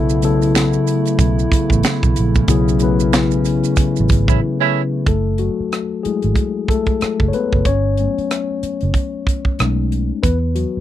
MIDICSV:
0, 0, Header, 1, 7, 480
1, 0, Start_track
1, 0, Key_signature, 3, "minor"
1, 0, Tempo, 645161
1, 1850, Time_signature, 4, 2, 24, 8
1, 8039, End_track
2, 0, Start_track
2, 0, Title_t, "Horn section"
2, 0, Program_c, 0, 61
2, 3188, Note_on_c, 0, 61, 61
2, 3188, Note_on_c, 0, 64, 70
2, 3189, Note_on_c, 0, 57, 64
2, 3272, Note_off_c, 0, 61, 0
2, 3272, Note_off_c, 0, 64, 0
2, 3273, Note_off_c, 0, 57, 0
2, 3430, Note_on_c, 0, 57, 70
2, 3430, Note_on_c, 0, 61, 73
2, 3430, Note_on_c, 0, 64, 79
2, 3583, Note_off_c, 0, 57, 0
2, 3584, Note_off_c, 0, 61, 0
2, 3584, Note_off_c, 0, 64, 0
2, 8039, End_track
3, 0, Start_track
3, 0, Title_t, "Analog synth pad"
3, 0, Program_c, 1, 89
3, 0, Note_on_c, 1, 49, 74
3, 0, Note_on_c, 1, 57, 64
3, 0, Note_on_c, 1, 59, 72
3, 0, Note_on_c, 1, 64, 80
3, 1580, Note_off_c, 1, 59, 0
3, 1604, Note_on_c, 1, 61, 65
3, 3741, Note_off_c, 1, 57, 0
3, 3742, Note_off_c, 1, 49, 0
3, 3742, Note_off_c, 1, 64, 0
3, 3745, Note_off_c, 1, 61, 0
3, 8039, End_track
4, 0, Start_track
4, 0, Title_t, "Tine electric piano"
4, 0, Program_c, 2, 4
4, 0, Control_c, 2, 64, 127
4, 0, Note_on_c, 2, 49, 87
4, 0, Note_on_c, 2, 54, 83
4, 0, Note_on_c, 2, 59, 84
4, 0, Note_on_c, 2, 64, 84
4, 0, Note_on_c, 2, 69, 102
4, 0, Note_on_c, 2, 76, 78
4, 92, Note_off_c, 2, 49, 0
4, 92, Note_off_c, 2, 54, 0
4, 94, Note_off_c, 2, 59, 0
4, 96, Note_off_c, 2, 64, 0
4, 97, Note_off_c, 2, 69, 0
4, 168, Note_on_c, 2, 49, 78
4, 168, Note_on_c, 2, 54, 70
4, 173, Note_on_c, 2, 59, 68
4, 181, Note_on_c, 2, 64, 68
4, 183, Note_on_c, 2, 69, 92
4, 889, Note_off_c, 2, 49, 0
4, 889, Note_off_c, 2, 54, 0
4, 892, Note_off_c, 2, 59, 0
4, 896, Note_off_c, 2, 64, 0
4, 897, Note_off_c, 2, 69, 0
4, 1848, Note_on_c, 2, 49, 86
4, 1849, Note_on_c, 2, 54, 79
4, 1852, Note_on_c, 2, 59, 79
4, 1857, Note_on_c, 2, 64, 76
4, 1861, Note_on_c, 2, 68, 93
4, 2040, Note_off_c, 2, 49, 0
4, 2041, Note_off_c, 2, 54, 0
4, 2042, Note_off_c, 2, 59, 0
4, 2045, Note_off_c, 2, 64, 0
4, 2047, Note_off_c, 2, 68, 0
4, 2092, Note_on_c, 2, 49, 82
4, 2096, Note_on_c, 2, 54, 73
4, 2103, Note_on_c, 2, 59, 69
4, 2103, Note_on_c, 2, 64, 73
4, 2109, Note_on_c, 2, 71, 88
4, 2811, Note_off_c, 2, 49, 0
4, 2814, Note_off_c, 2, 54, 0
4, 2817, Note_off_c, 2, 59, 0
4, 2817, Note_off_c, 2, 64, 0
4, 2820, Note_off_c, 2, 71, 0
4, 3776, Note_on_c, 2, 69, 71
4, 3780, Control_c, 2, 64, 0
4, 3784, Note_off_c, 2, 76, 0
4, 3789, Note_on_c, 2, 57, 59
4, 3909, Control_c, 2, 64, 127
4, 4003, Note_off_c, 2, 57, 0
4, 4011, Note_on_c, 2, 66, 60
4, 4020, Note_off_c, 2, 69, 0
4, 4029, Note_on_c, 2, 54, 50
4, 4469, Note_off_c, 2, 54, 0
4, 4489, Note_on_c, 2, 68, 73
4, 4495, Note_on_c, 2, 54, 41
4, 4502, Note_on_c, 2, 64, 45
4, 4503, Note_on_c, 2, 57, 38
4, 4505, Note_off_c, 2, 66, 0
4, 4506, Note_on_c, 2, 56, 51
4, 4939, Note_off_c, 2, 68, 0
4, 4948, Note_off_c, 2, 56, 0
4, 4981, Note_on_c, 2, 69, 72
4, 4986, Note_off_c, 2, 57, 0
4, 4995, Note_on_c, 2, 57, 59
4, 5390, Note_off_c, 2, 57, 0
4, 5420, Note_on_c, 2, 73, 58
4, 5426, Note_off_c, 2, 69, 0
4, 5456, Note_off_c, 2, 73, 0
4, 5461, Note_on_c, 2, 71, 82
4, 5474, Note_on_c, 2, 59, 59
4, 5663, Note_off_c, 2, 54, 0
4, 5666, Note_off_c, 2, 64, 0
4, 5686, Note_off_c, 2, 59, 0
4, 5700, Control_c, 2, 64, 0
4, 5702, Note_off_c, 2, 71, 0
4, 5702, Note_on_c, 2, 73, 89
4, 5719, Note_on_c, 2, 61, 68
4, 5840, Control_c, 2, 64, 127
4, 5944, Note_off_c, 2, 61, 0
4, 5946, Note_on_c, 2, 54, 44
4, 5949, Note_on_c, 2, 57, 39
4, 5952, Note_on_c, 2, 59, 37
4, 5953, Note_on_c, 2, 61, 48
4, 6386, Note_off_c, 2, 73, 0
4, 7108, Note_off_c, 2, 54, 0
4, 7110, Note_off_c, 2, 57, 0
4, 7111, Note_off_c, 2, 59, 0
4, 7112, Note_off_c, 2, 61, 0
4, 7139, Control_c, 2, 64, 0
4, 7140, Note_on_c, 2, 56, 46
4, 7141, Note_on_c, 2, 57, 42
4, 7147, Note_on_c, 2, 61, 42
4, 7147, Note_on_c, 2, 63, 52
4, 7280, Control_c, 2, 64, 127
4, 7591, Note_off_c, 2, 56, 0
4, 7592, Note_off_c, 2, 57, 0
4, 7595, Note_off_c, 2, 61, 0
4, 7595, Note_off_c, 2, 63, 0
4, 7609, Note_on_c, 2, 71, 74
4, 7621, Control_c, 2, 64, 0
4, 7621, Note_on_c, 2, 59, 58
4, 7717, Note_off_c, 2, 71, 0
4, 7726, Note_off_c, 2, 59, 0
4, 7738, Control_c, 2, 64, 127
4, 7851, Note_on_c, 2, 66, 65
4, 7861, Note_on_c, 2, 54, 52
4, 8039, Note_off_c, 2, 54, 0
4, 8039, Note_off_c, 2, 66, 0
4, 8039, End_track
5, 0, Start_track
5, 0, Title_t, "Fingered electric bass"
5, 0, Program_c, 3, 33
5, 0, Note_on_c, 3, 35, 101
5, 567, Note_off_c, 3, 35, 0
5, 891, Note_on_c, 3, 35, 94
5, 1079, Note_off_c, 3, 35, 0
5, 1276, Note_on_c, 3, 33, 84
5, 1351, Note_off_c, 3, 33, 0
5, 1519, Note_on_c, 3, 35, 98
5, 1593, Note_off_c, 3, 35, 0
5, 1627, Note_on_c, 3, 34, 91
5, 1809, Note_off_c, 3, 34, 0
5, 1855, Note_on_c, 3, 35, 101
5, 2685, Note_off_c, 3, 35, 0
5, 2976, Note_on_c, 3, 33, 91
5, 3057, Note_on_c, 3, 32, 87
5, 3068, Note_off_c, 3, 33, 0
5, 3166, Note_off_c, 3, 32, 0
5, 3192, Note_on_c, 3, 33, 78
5, 3268, Note_off_c, 3, 33, 0
5, 3778, Note_on_c, 3, 30, 73
5, 4075, Note_off_c, 3, 30, 0
5, 4644, Note_on_c, 3, 32, 65
5, 4716, Note_off_c, 3, 32, 0
5, 5363, Note_on_c, 3, 30, 67
5, 5435, Note_off_c, 3, 30, 0
5, 5611, Note_on_c, 3, 30, 63
5, 5680, Note_off_c, 3, 30, 0
5, 5704, Note_on_c, 3, 31, 86
5, 5999, Note_off_c, 3, 31, 0
5, 6567, Note_on_c, 3, 30, 63
5, 6638, Note_off_c, 3, 30, 0
5, 7145, Note_on_c, 3, 35, 84
5, 7516, Note_off_c, 3, 35, 0
5, 7624, Note_on_c, 3, 40, 88
5, 7919, Note_off_c, 3, 40, 0
5, 8039, End_track
6, 0, Start_track
6, 0, Title_t, "Muted fingered electric bass strokes"
6, 4168, Note_on_c, 9, 29, 38
6, 4242, Note_off_c, 9, 29, 0
6, 4505, Note_on_c, 9, 29, 34
6, 4580, Note_off_c, 9, 29, 0
6, 5225, Note_on_c, 9, 29, 38
6, 5300, Note_off_c, 9, 29, 0
6, 6087, Note_on_c, 9, 29, 37
6, 6161, Note_off_c, 9, 29, 0
6, 6421, Note_on_c, 9, 29, 35
6, 6495, Note_off_c, 9, 29, 0
6, 8013, Note_on_c, 9, 29, 39
6, 8039, Note_off_c, 9, 29, 0
6, 8039, End_track
7, 0, Start_track
7, 0, Title_t, "Drums"
7, 71, Note_on_c, 9, 82, 49
7, 145, Note_off_c, 9, 82, 0
7, 165, Note_on_c, 9, 42, 64
7, 168, Note_on_c, 9, 82, 48
7, 239, Note_off_c, 9, 42, 0
7, 242, Note_off_c, 9, 82, 0
7, 312, Note_on_c, 9, 82, 50
7, 322, Note_on_c, 9, 42, 35
7, 386, Note_off_c, 9, 82, 0
7, 396, Note_off_c, 9, 42, 0
7, 412, Note_on_c, 9, 26, 58
7, 412, Note_on_c, 9, 82, 62
7, 414, Note_on_c, 9, 42, 79
7, 417, Note_on_c, 9, 38, 103
7, 486, Note_off_c, 9, 26, 0
7, 486, Note_off_c, 9, 82, 0
7, 488, Note_off_c, 9, 42, 0
7, 492, Note_off_c, 9, 38, 0
7, 544, Note_on_c, 9, 82, 39
7, 618, Note_off_c, 9, 82, 0
7, 650, Note_on_c, 9, 82, 47
7, 654, Note_on_c, 9, 42, 62
7, 724, Note_off_c, 9, 82, 0
7, 728, Note_off_c, 9, 42, 0
7, 785, Note_on_c, 9, 42, 37
7, 795, Note_on_c, 9, 82, 49
7, 859, Note_off_c, 9, 42, 0
7, 870, Note_off_c, 9, 82, 0
7, 883, Note_on_c, 9, 36, 92
7, 886, Note_on_c, 9, 42, 65
7, 891, Note_on_c, 9, 82, 60
7, 958, Note_off_c, 9, 36, 0
7, 960, Note_off_c, 9, 42, 0
7, 965, Note_off_c, 9, 82, 0
7, 1035, Note_on_c, 9, 82, 38
7, 1110, Note_off_c, 9, 82, 0
7, 1128, Note_on_c, 9, 36, 97
7, 1136, Note_on_c, 9, 82, 43
7, 1140, Note_on_c, 9, 42, 72
7, 1203, Note_off_c, 9, 36, 0
7, 1210, Note_off_c, 9, 82, 0
7, 1214, Note_off_c, 9, 42, 0
7, 1264, Note_on_c, 9, 36, 81
7, 1283, Note_on_c, 9, 82, 44
7, 1338, Note_off_c, 9, 36, 0
7, 1357, Note_off_c, 9, 82, 0
7, 1364, Note_on_c, 9, 42, 81
7, 1374, Note_on_c, 9, 26, 69
7, 1374, Note_on_c, 9, 38, 106
7, 1374, Note_on_c, 9, 82, 68
7, 1439, Note_off_c, 9, 42, 0
7, 1448, Note_off_c, 9, 38, 0
7, 1449, Note_off_c, 9, 26, 0
7, 1449, Note_off_c, 9, 82, 0
7, 1510, Note_on_c, 9, 36, 97
7, 1515, Note_on_c, 9, 82, 43
7, 1584, Note_off_c, 9, 36, 0
7, 1590, Note_off_c, 9, 82, 0
7, 1608, Note_on_c, 9, 42, 64
7, 1609, Note_on_c, 9, 82, 46
7, 1682, Note_off_c, 9, 42, 0
7, 1684, Note_off_c, 9, 82, 0
7, 1750, Note_on_c, 9, 82, 46
7, 1753, Note_on_c, 9, 36, 78
7, 1824, Note_off_c, 9, 82, 0
7, 1827, Note_off_c, 9, 36, 0
7, 1844, Note_on_c, 9, 42, 81
7, 1847, Note_on_c, 9, 36, 104
7, 1855, Note_on_c, 9, 82, 64
7, 1918, Note_off_c, 9, 42, 0
7, 1922, Note_off_c, 9, 36, 0
7, 1929, Note_off_c, 9, 82, 0
7, 1997, Note_on_c, 9, 82, 47
7, 2072, Note_off_c, 9, 82, 0
7, 2080, Note_on_c, 9, 42, 67
7, 2081, Note_on_c, 9, 82, 49
7, 2154, Note_off_c, 9, 42, 0
7, 2155, Note_off_c, 9, 82, 0
7, 2231, Note_on_c, 9, 82, 51
7, 2306, Note_off_c, 9, 82, 0
7, 2331, Note_on_c, 9, 26, 60
7, 2331, Note_on_c, 9, 42, 76
7, 2331, Note_on_c, 9, 82, 63
7, 2334, Note_on_c, 9, 38, 102
7, 2405, Note_off_c, 9, 26, 0
7, 2405, Note_off_c, 9, 42, 0
7, 2405, Note_off_c, 9, 82, 0
7, 2408, Note_off_c, 9, 38, 0
7, 2465, Note_on_c, 9, 82, 41
7, 2539, Note_off_c, 9, 82, 0
7, 2566, Note_on_c, 9, 82, 54
7, 2574, Note_on_c, 9, 42, 73
7, 2640, Note_off_c, 9, 82, 0
7, 2648, Note_off_c, 9, 42, 0
7, 2704, Note_on_c, 9, 42, 35
7, 2711, Note_on_c, 9, 82, 48
7, 2779, Note_off_c, 9, 42, 0
7, 2785, Note_off_c, 9, 82, 0
7, 2800, Note_on_c, 9, 82, 65
7, 2805, Note_on_c, 9, 36, 95
7, 2810, Note_on_c, 9, 42, 67
7, 2875, Note_off_c, 9, 82, 0
7, 2879, Note_off_c, 9, 36, 0
7, 2884, Note_off_c, 9, 42, 0
7, 2948, Note_on_c, 9, 82, 39
7, 3023, Note_off_c, 9, 82, 0
7, 3042, Note_on_c, 9, 82, 46
7, 3049, Note_on_c, 9, 36, 97
7, 3064, Note_on_c, 9, 42, 69
7, 3117, Note_off_c, 9, 82, 0
7, 3123, Note_off_c, 9, 36, 0
7, 3139, Note_off_c, 9, 42, 0
7, 3185, Note_on_c, 9, 36, 91
7, 3195, Note_on_c, 9, 82, 43
7, 3259, Note_off_c, 9, 36, 0
7, 3270, Note_off_c, 9, 82, 0
7, 3767, Note_on_c, 9, 42, 64
7, 3768, Note_on_c, 9, 36, 85
7, 3842, Note_off_c, 9, 42, 0
7, 3843, Note_off_c, 9, 36, 0
7, 4003, Note_on_c, 9, 42, 57
7, 4077, Note_off_c, 9, 42, 0
7, 4258, Note_on_c, 9, 42, 64
7, 4262, Note_on_c, 9, 37, 77
7, 4332, Note_off_c, 9, 42, 0
7, 4336, Note_off_c, 9, 37, 0
7, 4501, Note_on_c, 9, 42, 53
7, 4575, Note_off_c, 9, 42, 0
7, 4631, Note_on_c, 9, 42, 31
7, 4705, Note_off_c, 9, 42, 0
7, 4728, Note_on_c, 9, 36, 73
7, 4733, Note_on_c, 9, 42, 54
7, 4803, Note_off_c, 9, 36, 0
7, 4808, Note_off_c, 9, 42, 0
7, 4973, Note_on_c, 9, 36, 75
7, 4990, Note_on_c, 9, 42, 57
7, 5047, Note_off_c, 9, 36, 0
7, 5064, Note_off_c, 9, 42, 0
7, 5105, Note_on_c, 9, 42, 26
7, 5109, Note_on_c, 9, 36, 68
7, 5180, Note_off_c, 9, 42, 0
7, 5183, Note_off_c, 9, 36, 0
7, 5216, Note_on_c, 9, 42, 61
7, 5225, Note_on_c, 9, 37, 85
7, 5290, Note_off_c, 9, 42, 0
7, 5299, Note_off_c, 9, 37, 0
7, 5355, Note_on_c, 9, 36, 72
7, 5430, Note_off_c, 9, 36, 0
7, 5456, Note_on_c, 9, 42, 54
7, 5530, Note_off_c, 9, 42, 0
7, 5599, Note_on_c, 9, 36, 72
7, 5674, Note_off_c, 9, 36, 0
7, 5693, Note_on_c, 9, 36, 83
7, 5693, Note_on_c, 9, 42, 73
7, 5767, Note_off_c, 9, 42, 0
7, 5768, Note_off_c, 9, 36, 0
7, 5933, Note_on_c, 9, 42, 58
7, 6008, Note_off_c, 9, 42, 0
7, 6089, Note_on_c, 9, 42, 28
7, 6163, Note_off_c, 9, 42, 0
7, 6181, Note_on_c, 9, 42, 65
7, 6184, Note_on_c, 9, 37, 84
7, 6255, Note_off_c, 9, 42, 0
7, 6259, Note_off_c, 9, 37, 0
7, 6420, Note_on_c, 9, 42, 52
7, 6495, Note_off_c, 9, 42, 0
7, 6552, Note_on_c, 9, 42, 30
7, 6626, Note_off_c, 9, 42, 0
7, 6650, Note_on_c, 9, 36, 77
7, 6656, Note_on_c, 9, 42, 58
7, 6725, Note_off_c, 9, 36, 0
7, 6731, Note_off_c, 9, 42, 0
7, 6895, Note_on_c, 9, 36, 77
7, 6909, Note_on_c, 9, 42, 57
7, 6969, Note_off_c, 9, 36, 0
7, 6983, Note_off_c, 9, 42, 0
7, 7030, Note_on_c, 9, 36, 74
7, 7104, Note_off_c, 9, 36, 0
7, 7135, Note_on_c, 9, 42, 62
7, 7144, Note_on_c, 9, 37, 93
7, 7209, Note_off_c, 9, 42, 0
7, 7219, Note_off_c, 9, 37, 0
7, 7381, Note_on_c, 9, 42, 53
7, 7455, Note_off_c, 9, 42, 0
7, 7614, Note_on_c, 9, 36, 86
7, 7619, Note_on_c, 9, 42, 69
7, 7689, Note_off_c, 9, 36, 0
7, 7694, Note_off_c, 9, 42, 0
7, 7854, Note_on_c, 9, 42, 58
7, 7929, Note_off_c, 9, 42, 0
7, 8039, End_track
0, 0, End_of_file